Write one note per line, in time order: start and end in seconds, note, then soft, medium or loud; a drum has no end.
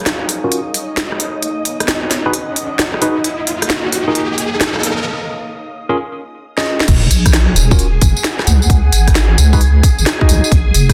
0.00 3.24 D#4 medium
0.00 5.06 G#4 medium
0.00 5.06 C#5 medium
0.00 5.06 D#5 medium
0.00 1.20 F5 medium
0.00 5.06 D#6 medium
0.00 riser medium
0.06 snare loud
0.06 closed hi-hat medium
0.29 open hi-hat loud
0.44 0.59 C#4 medium
0.44 0.59 F4 medium
0.44 0.59 F#4 medium
0.44 0.59 A#4 medium
0.52 closed hi-hat medium
0.74 open hi-hat loud
0.97 snare loud
0.97 closed hi-hat medium
1.12 cross-stick medium
1.20 open hi-hat loud
1.43 closed hi-hat medium
1.65 open hi-hat loud
1.80 cross-stick medium
1.80 closed hi-hat medium
1.88 snare loud
1.88 closed hi-hat medium
2.11 3.25 F#5 medium
2.11 snare medium
2.11 open hi-hat loud
2.26 2.33 D#4 medium
2.26 2.33 F#4 medium
2.26 2.33 G#4 medium
2.26 2.33 B4 loud
2.33 closed hi-hat medium
2.56 open hi-hat loud
2.79 snare loud
2.79 closed hi-hat medium
2.94 cross-stick medium
3.02 3.16 D#4 medium
3.02 3.16 F#4 medium
3.02 3.16 G#4 medium
3.02 3.16 B4 loud
3.02 open hi-hat loud
3.24 5.06 A#3 medium
3.24 closed hi-hat medium
3.42 5.06 D#4 medium
3.47 open hi-hat loud
3.62 cross-stick medium
3.62 closed hi-hat medium
3.70 snare loud
3.70 closed hi-hat medium
3.92 open hi-hat loud
4.08 4.22 D#4 medium
4.08 4.22 F4 medium
4.08 4.22 G#4 medium
4.08 4.22 A#4 medium
4.08 5.06 F5 medium
4.15 closed hi-hat medium
4.38 open hi-hat loud
4.61 snare loud
4.61 closed hi-hat medium
4.76 cross-stick medium
4.83 open hi-hat loud
5.89 5.96 C#4 medium
5.89 5.96 F4 medium
5.89 5.96 G#4 medium
5.89 5.96 A#4 loud
6.58 6.87 C#4 medium
6.58 6.87 F4 medium
6.58 6.87 G#4 medium
6.58 6.87 D#5 medium
6.58 snare medium
6.80 snare loud
6.88 7.08 D#1 loud
6.88 10.93 G#4 medium
6.88 10.93 G#5 medium
6.88 kick loud
6.88 closed hi-hat medium
6.88 crash loud
6.88 tambourine soft
7.11 7.54 A#1 medium
7.11 open hi-hat loud
7.11 tambourine medium
7.26 kick medium
7.26 cross-stick medium
7.26 closed hi-hat medium
7.26 tambourine soft
7.33 snare loud
7.33 closed hi-hat medium
7.33 tambourine soft
7.56 7.99 D#1 loud
7.56 open hi-hat loud
7.56 tambourine medium
7.60 10.52 F#5 medium
7.71 7.86 C#4 medium
7.71 7.86 F4 medium
7.71 7.86 F#4 medium
7.71 7.86 A#4 medium
7.71 kick loud
7.71 tambourine soft
7.79 closed hi-hat medium
7.79 tambourine soft
8.01 8.14 F#1 loud
8.01 kick loud
8.01 open hi-hat loud
8.01 tambourine medium
8.17 tambourine soft
8.24 snare loud
8.24 closed hi-hat medium
8.24 tambourine soft
8.39 cross-stick medium
8.39 snare medium
8.47 8.67 C#2 loud
8.47 open hi-hat medium
8.47 tambourine medium
8.62 tambourine soft
8.70 8.90 C#2 loud
8.70 kick loud
8.70 closed hi-hat medium
8.92 9.36 G#1 loud
8.92 open hi-hat loud
8.92 tambourine medium
9.08 kick medium
9.08 cross-stick medium
9.08 closed hi-hat medium
9.08 tambourine soft
9.15 snare loud
9.15 closed hi-hat medium
9.15 tambourine soft
9.38 9.81 C#2 loud
9.38 open hi-hat loud
9.38 tambourine medium
9.53 9.60 D#4 loud
9.53 9.60 F#4 medium
9.53 9.60 G#4 medium
9.53 9.60 B4 loud
9.53 kick loud
9.53 tambourine soft
9.61 closed hi-hat medium
9.61 tambourine soft
9.83 kick loud
9.83 open hi-hat loud
9.83 tambourine medium
9.99 10.05 G#1 medium
9.99 tambourine soft
10.06 snare loud
10.06 closed hi-hat medium
10.21 10.51 D#4 medium
10.21 10.51 F#4 medium
10.21 10.51 G#4 medium
10.21 10.51 D#5 medium
10.21 kick medium
10.21 cross-stick medium
10.29 10.41 B1 medium
10.29 open hi-hat medium
10.29 tambourine medium
10.44 tambourine soft
10.52 10.71 A#1 loud
10.52 kick loud
10.52 closed hi-hat medium
10.52 tambourine soft
10.74 10.93 F1 loud
10.74 open hi-hat loud
10.74 tambourine medium
10.89 kick medium
10.89 cross-stick medium
10.89 closed hi-hat medium
10.89 tambourine soft